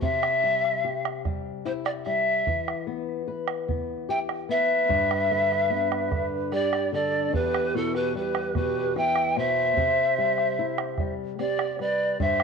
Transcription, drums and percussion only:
0.02 bombo low
0.23 bombo rim
0.65 bombo rim
1.05 bombo rim
1.25 bombo rim, bombo low
1.66 bombo rim
1.86 bombo rim
2.06 bombo rim
2.47 bombo low
2.68 bombo rim
3.48 bombo rim
3.69 bombo low
4.29 bombo rim
4.90 bombo low
5.11 bombo rim
5.52 bombo rim
5.92 bombo rim
6.12 bombo rim, bombo low
6.52 bombo rim
6.73 bombo rim
6.94 bombo rim
7.34 bombo low
7.54 bombo rim
7.95 bombo rim
8.35 bombo rim
8.55 bombo rim, bombo low
8.96 bombo rim
9.16 bombo rim
9.36 bombo rim
9.77 bombo low
10.38 bombo rim
10.78 bombo rim
10.98 bombo rim, bombo low
11.39 bombo rim
11.59 bombo rim
11.79 bombo rim
12.20 bombo low
12.40 bombo rim

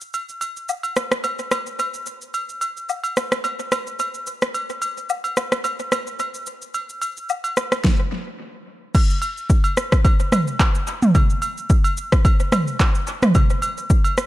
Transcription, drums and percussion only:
0.01 shaker
0.14 high agogo, shaker
0.29 shaker
0.41 high agogo, shaker
0.57 shaker
0.69 low woodblock, shaker
0.83 high agogo, shaker
0.96 cross-stick, shaker
1.12 cross-stick, shaker
1.24 high agogo, shaker
1.39 shaker
1.51 cross-stick, high agogo, shaker
1.67 shaker
1.79 high agogo, shaker
1.94 shaker
2.06 shaker
2.21 shaker
2.34 high agogo, shaker
2.49 shaker
2.61 high agogo, shaker
2.77 shaker
2.89 low woodblock, shaker
3.04 high agogo, shaker
3.17 cross-stick, shaker
3.32 cross-stick, shaker
3.44 high agogo, shaker
3.59 shaker
3.72 cross-stick, high agogo, shaker
3.87 shaker
3.99 high agogo, shaker
4.14 shaker
4.27 shaker
4.42 cross-stick, shaker
4.54 high agogo, shaker
4.70 shaker
4.82 high agogo, shaker
4.97 shaker
5.09 low woodblock, shaker
5.24 high agogo, shaker
5.37 cross-stick, shaker
5.52 cross-stick, shaker
5.64 high agogo, shaker
5.79 shaker
5.92 cross-stick, high agogo, shaker
6.07 shaker
6.19 high agogo, shaker
6.34 shaker
6.46 shaker
6.62 shaker
6.74 high agogo, shaker
6.89 shaker
7.02 high agogo, shaker
7.17 shaker
7.29 low woodblock, shaker
7.44 high agogo, shaker
7.57 cross-stick, shaker
7.72 cross-stick, shaker
7.84 kick, snare
8.95 kick, crash, high agogo, shaker
9.10 shaker
9.22 high agogo, shaker
9.37 shaker
9.50 kick, shaker
9.64 high agogo, shaker
9.77 cross-stick, shaker
9.92 kick, cross-stick, shaker
10.05 kick, high agogo, shaker
10.20 shaker
10.32 cross-stick, mid tom, high agogo, shaker
10.47 shaker
10.60 kick, clap, high agogo, shaker
10.75 shaker
10.87 shaker
11.02 mid tom, shaker
11.15 kick, high agogo, shaker
11.30 shaker
11.42 high agogo, shaker
11.58 shaker
11.70 kick, shaker
11.84 high agogo, shaker
11.97 shaker
12.12 kick, cross-stick, shaker
12.25 kick, high agogo, shaker
12.40 shaker
12.52 cross-stick, mid tom, high agogo, shaker
12.67 shaker
12.80 kick, clap, high agogo, shaker
12.95 shaker
13.07 shaker
13.22 cross-stick, mid tom, shaker
13.35 kick, high agogo, shaker
13.50 shaker
13.62 high agogo, shaker
13.78 shaker
13.90 kick, shaker
14.04 high agogo, shaker
14.17 cross-stick, shaker

